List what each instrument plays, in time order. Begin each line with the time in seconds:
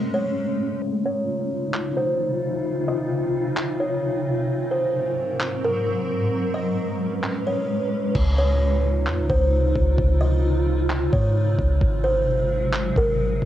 Already playing: ambient pad G#3 A3 C#4
0.14 kalimba C#5
0.82 ambient pad C3 C#3 D#4 F4
1.05 kalimba C#5
1.74 clap
1.97 kalimba C5
2.88 kalimba D#5
3.57 clap
3.80 kalimba C#5
4.49 ambient pad G#2 F#3 C4 A#4
4.71 kalimba C5
5.40 clap
5.64 kalimba A#4
6.32 ambient pad A2 G#3 C#4 B4
6.54 kalimba D#5
7.23 clap
7.47 kalimba C#5
8.15 808-style bass C#2, ambient pad C3 C#3 D#4 F4, kick, crash
8.38 kalimba C#5
9.07 808-style bass F2, clap
9.18 808-style bass C#2
9.30 808-style bass C#2, kalimba C5, kick
9.76 808-style bass C#2, kick
9.98 808-style bass C#2, kick
10.21 kalimba D#5
10.90 clap
11.13 808-style bass G#2, kalimba C#5, kick
11.59 808-style bass C#2, kick
11.81 808-style bass G#1, ambient pad F#3 G#3, kick
12.04 kalimba C5
12.73 clap
12.96 808-style bass G#1, kalimba A#4, kick
13.42 808-style bass G#1, kick